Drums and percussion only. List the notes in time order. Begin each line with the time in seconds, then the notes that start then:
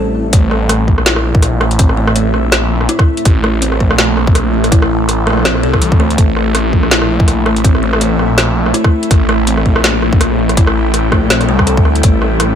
0.33 kick, closed hi-hat
0.51 cross-stick
0.69 cross-stick, closed hi-hat
0.88 kick
0.98 cross-stick
1.06 snare, closed hi-hat
1.16 cross-stick
1.35 kick
1.42 cross-stick, closed hi-hat
1.61 cross-stick
1.71 closed hi-hat
1.79 kick, closed hi-hat
1.89 cross-stick
2.07 cross-stick
2.16 closed hi-hat
2.34 cross-stick
2.52 cross-stick, snare, closed hi-hat
2.81 cross-stick
2.89 closed hi-hat
2.99 kick, cross-stick
3.17 closed hi-hat
3.25 kick, cross-stick, closed hi-hat
3.44 cross-stick
3.62 closed hi-hat
3.72 cross-stick
3.81 kick
3.91 cross-stick
3.98 snare, closed hi-hat
4.17 cross-stick
4.27 kick
4.35 cross-stick, closed hi-hat
4.64 cross-stick, closed hi-hat
4.72 kick, closed hi-hat
4.82 cross-stick
5.09 cross-stick, closed hi-hat
5.27 cross-stick
5.30 cross-stick
5.33 cross-stick
5.37 cross-stick
5.39 cross-stick
5.43 cross-stick, snare, closed hi-hat
5.55 cross-stick
5.74 kick, cross-stick
5.82 closed hi-hat
5.92 kick
6.00 cross-stick
6.10 closed hi-hat
6.18 kick, closed hi-hat
6.37 cross-stick
6.55 cross-stick, closed hi-hat
6.73 kick
6.83 cross-stick
6.91 snare, closed hi-hat
7.02 cross-stick
7.20 kick
7.28 cross-stick, closed hi-hat
7.46 cross-stick
7.56 closed hi-hat
7.64 kick, closed hi-hat
7.75 cross-stick
7.93 cross-stick
8.01 closed hi-hat
8.19 cross-stick
8.38 cross-stick, snare, closed hi-hat
8.66 cross-stick
8.74 closed hi-hat
8.84 kick, cross-stick
9.03 closed hi-hat
9.11 kick, cross-stick, closed hi-hat
9.29 cross-stick
9.47 closed hi-hat
9.57 cross-stick
9.66 kick
9.76 cross-stick
9.84 snare, closed hi-hat
10.02 cross-stick
10.13 kick
10.21 cross-stick, closed hi-hat
10.49 cross-stick, closed hi-hat
10.57 kick, closed hi-hat
10.67 cross-stick
10.94 cross-stick, closed hi-hat
11.12 kick, cross-stick
11.30 snare, closed hi-hat
11.41 cross-stick, closed hi-hat
11.59 kick, cross-stick
11.67 closed hi-hat
11.77 kick
11.85 cross-stick
11.95 closed hi-hat
12.03 kick, closed hi-hat
12.22 cross-stick
12.40 cross-stick, closed hi-hat